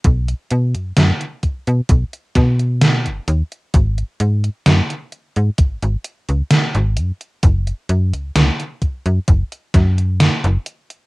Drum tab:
HH |xxxxxxxxxxxxxxxx|xxxxxxxxxxxxxxxx|xxxxxxxxxxxxxxxx|
SD |----o-----o-o---|----o-------o---|----o-----o-o---|
BD |o-----o-o-o-----|o-------o-------|o-----o-o-o-----|